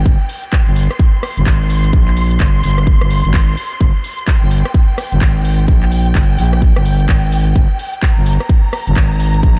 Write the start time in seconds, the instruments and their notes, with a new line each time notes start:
Already playing: string section G5
0.06 kick, closed hi-hat
0.29 open hi-hat
0.44 closed hi-hat
0.53 kick, clap, closed hi-hat
0.64 fm bass G1, string section C6
0.76 open hi-hat
0.83 closed hi-hat
0.91 cross-stick, closed hi-hat
0.99 kick, closed hi-hat
1.23 cross-stick, open hi-hat
1.37 fm bass G1, closed hi-hat
1.46 fm bass G#1, kick, clap, closed hi-hat
1.70 open hi-hat
1.84 closed hi-hat
1.93 fm bass A#1, kick, closed hi-hat
2.08 clap
2.17 open hi-hat
2.31 closed hi-hat
2.40 fm bass G1, kick, clap, closed hi-hat
2.63 fm bass G1, open hi-hat
2.71 closed hi-hat
2.78 cross-stick, closed hi-hat
2.87 kick, closed hi-hat
3.01 fm bass G1, cross-stick
3.10 open hi-hat
3.25 fm bass G#1, closed hi-hat
3.34 kick, clap, open hi-hat
3.57 open hi-hat
3.72 closed hi-hat
3.81 fm bass G1, kick, closed hi-hat
4.04 open hi-hat
4.19 closed hi-hat
4.27 kick, clap, closed hi-hat
4.39 fm bass G1, string section G5
4.51 open hi-hat
4.58 closed hi-hat
4.65 cross-stick, closed hi-hat
4.74 kick, closed hi-hat
4.98 cross-stick, open hi-hat
5.12 fm bass G1, closed hi-hat
5.21 kick, clap, closed hi-hat
5.45 open hi-hat
5.59 closed hi-hat
5.68 fm bass A#1, kick, closed hi-hat
5.83 clap
5.92 open hi-hat
6.06 closed hi-hat
6.15 fm bass G1, kick, clap, closed hi-hat
6.38 fm bass A#1, open hi-hat
6.46 closed hi-hat
6.53 cross-stick, closed hi-hat
6.62 kick, closed hi-hat
6.76 fm bass G1, cross-stick
6.85 open hi-hat
7.00 closed hi-hat
7.09 fm bass G#1, kick, clap, open hi-hat
7.32 open hi-hat
7.47 closed hi-hat
7.56 kick, closed hi-hat
7.79 open hi-hat
7.94 closed hi-hat
8.02 kick, clap, closed hi-hat
8.14 fm bass G1, string section A#5
8.26 open hi-hat
8.33 closed hi-hat
8.40 cross-stick, closed hi-hat
8.49 kick, closed hi-hat
8.73 cross-stick, open hi-hat
8.87 fm bass G1, closed hi-hat
8.96 fm bass G#1, kick, clap, closed hi-hat
9.20 open hi-hat
9.34 closed hi-hat
9.43 fm bass A#1, kick, closed hi-hat